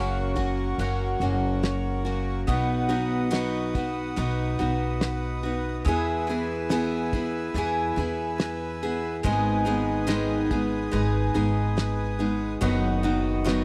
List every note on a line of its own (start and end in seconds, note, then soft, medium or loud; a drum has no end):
0.00 0.75 F#1 loud
0.00 0.36 F#2 medium
0.00 0.36 C#3 medium
0.00 0.36 F#3 loud
0.00 0.36 A#3 medium
0.00 2.47 A#3 medium
0.00 0.35 C#4 medium
0.00 0.34 F#4 medium
0.00 0.79 F#4 medium
0.00 2.44 A#4 medium
0.00 0.79 C#5 medium
0.00 0.80 F#5 medium
0.00 5.82 F#5 medium
0.00 2.44 C#6 medium
0.36 0.78 F#3 soft
0.36 0.78 A#3 medium
0.36 0.78 C#4 medium
0.36 0.78 F#4 medium
0.36 kick medium
0.36 ride soft
0.78 1.18 F#1 medium
0.78 1.21 F#3 medium
0.78 1.21 A#3 medium
0.78 1.21 C#4 medium
0.78 1.21 F#4 medium
0.78 1.20 F#4 medium
0.78 1.62 C#5 medium
0.78 2.47 F#5 medium
0.78 ride medium
1.20 2.43 F#1 medium
1.20 2.05 F#3 soft
1.20 2.05 A#3 soft
1.20 2.04 C#4 medium
1.20 2.04 F#4 medium
1.20 2.57 F#4 medium
1.20 ride medium
1.63 2.56 C#5 medium
1.63 snare medium
1.63 ride medium
2.05 2.47 F#3 soft
2.05 2.48 A#3 soft
2.05 2.47 C#4 medium
2.05 2.47 F#4 medium
2.05 ride medium
2.47 4.13 B1 medium
2.47 2.89 B2 medium
2.47 2.89 F#3 medium
2.47 5.84 B3 medium
2.47 2.89 B3 medium
2.47 2.88 D#4 medium
2.47 2.88 F#4 medium
2.47 9.21 B4 medium
2.47 4.16 F#5 medium
2.47 5.83 D#6 medium
2.47 kick medium
2.47 ride medium
2.89 3.29 B2 medium
2.89 3.30 F#3 medium
2.89 3.30 B3 medium
2.89 4.16 D#4 medium
2.89 3.31 D#4 medium
2.89 3.30 F#4 medium
2.89 ride medium
3.30 3.73 B2 medium
3.30 3.74 F#3 medium
3.30 3.74 B3 medium
3.30 3.74 D#4 medium
3.30 3.74 F#4 medium
3.30 4.17 B4 medium
3.30 snare medium
3.30 ride medium
3.75 4.16 B3 soft
3.75 4.17 D#4 soft
3.75 4.17 F#4 medium
3.75 kick medium
3.75 ride medium
4.16 4.57 B1 medium
4.16 4.59 F#3 medium
4.16 4.59 B3 medium
4.16 4.58 D#4 medium
4.16 4.59 D#4 medium
4.16 4.58 F#4 medium
4.16 5.01 B4 medium
4.16 5.85 F#5 medium
4.16 ride medium
4.59 5.82 B1 medium
4.59 5.46 B3 soft
4.59 5.94 D#4 medium
4.59 5.44 D#4 medium
4.59 5.42 F#4 medium
4.59 ride soft
5.01 6.69 B4 medium
5.01 snare medium
5.01 ride medium
5.43 5.86 B3 soft
5.43 5.87 D#4 medium
5.43 5.86 F#4 medium
5.43 ride soft
5.84 7.51 E2 loud
5.84 6.28 E3 medium
5.84 9.22 G#3 medium
5.84 6.29 B3 medium
5.84 6.28 E4 medium
5.84 6.28 G#4 loud
5.84 12.57 G#5 medium
5.84 7.55 G#5 medium
5.84 9.20 E6 medium
5.84 kick medium
5.84 ride medium
6.27 6.69 E3 medium
6.27 6.70 B3 medium
6.27 7.53 E4 medium
6.27 6.70 E4 medium
6.27 6.71 G#4 medium
6.27 ride soft
6.69 7.13 E3 medium
6.69 7.13 B3 medium
6.69 7.13 E4 medium
6.69 7.12 G#4 loud
6.69 7.55 B4 medium
6.69 snare medium
6.69 ride medium
7.13 7.56 B3 soft
7.13 7.56 E4 medium
7.13 7.55 G#4 medium
7.13 kick medium
7.13 ride medium
7.54 7.95 E2 loud
7.54 7.98 E3 medium
7.54 7.98 B3 medium
7.54 7.95 E4 medium
7.54 7.97 E4 medium
7.54 7.96 G#4 medium
7.54 8.38 B4 medium
7.54 9.23 G#5 medium
7.54 ride medium
7.96 9.20 E2 loud
7.96 8.84 B3 soft
7.96 9.32 E4 medium
7.96 8.82 E4 medium
7.96 8.82 G#4 medium
7.96 ride medium
8.38 9.32 B4 medium
8.38 snare medium
8.38 ride medium
8.83 9.24 B3 soft
8.83 9.25 E4 medium
8.83 9.24 G#4 medium
8.83 ride medium
9.23 10.89 G#1 loud
9.23 9.66 G#2 medium
9.23 9.66 D#3 medium
9.23 12.61 G#3 medium
9.23 9.65 G#3 medium
9.23 9.66 B3 medium
9.23 9.65 D#4 loud
9.23 9.65 G#4 medium
9.23 12.58 B4 medium
9.23 10.91 G#5 medium
9.23 13.64 D#6 medium
9.23 kick medium
9.23 ride medium
9.65 10.06 G#2 medium
9.65 10.06 D#3 medium
9.65 10.06 G#3 medium
9.65 10.06 B3 medium
9.65 10.91 D#4 medium
9.65 10.07 D#4 medium
9.65 10.07 G#4 medium
9.65 ride medium
10.07 10.50 G#2 medium
10.07 10.50 D#3 medium
10.07 10.50 G#3 loud
10.07 10.50 B3 medium
10.07 10.50 D#4 loud
10.07 10.50 G#4 loud
10.07 10.91 B4 medium
10.07 snare medium
10.07 ride medium
10.51 10.90 G#3 medium
10.51 10.91 B3 medium
10.51 10.91 D#4 medium
10.51 10.93 G#4 medium
10.51 kick medium
10.51 ride medium
10.91 11.33 G#1 loud
10.91 11.34 G#3 medium
10.91 11.34 B3 medium
10.91 11.33 D#4 medium
10.91 11.34 D#4 medium
10.91 11.33 G#4 medium
10.91 11.76 B4 medium
10.91 12.62 G#5 medium
10.91 ride medium
11.34 12.58 G#1 loud
11.34 12.19 G#3 medium
11.34 12.19 B3 medium
11.34 12.70 D#4 medium
11.34 12.19 D#4 medium
11.34 12.18 G#4 medium
11.34 ride medium
11.77 12.70 B4 medium
11.77 snare medium
11.77 ride medium
12.19 12.60 G#3 soft
12.19 12.60 B3 soft
12.19 12.61 D#4 medium
12.19 12.61 G#4 medium
12.19 ride soft
12.61 13.64 F#1 loud
12.61 13.03 F#2 medium
12.61 13.04 D#3 medium
12.61 13.03 F#3 medium
12.61 13.03 B3 medium
12.61 13.64 B3 medium
12.61 13.03 D#4 loud
12.61 13.02 F#4 loud
12.61 13.64 B4 medium
12.61 13.64 F#5 medium
12.61 kick medium
12.61 ride medium
13.03 13.43 F#2 medium
13.03 13.44 D#3 medium
13.03 13.44 F#3 medium
13.03 13.45 B3 medium
13.03 13.64 D#4 medium
13.03 13.45 D#4 medium
13.03 13.45 F#4 medium
13.03 ride soft
13.44 13.64 F#2 loud
13.44 13.64 D#3 medium
13.44 13.64 F#3 loud
13.44 13.64 B3 medium
13.44 13.64 D#4 medium
13.44 13.64 F#4 loud
13.44 13.64 B4 medium
13.44 snare medium
13.44 ride medium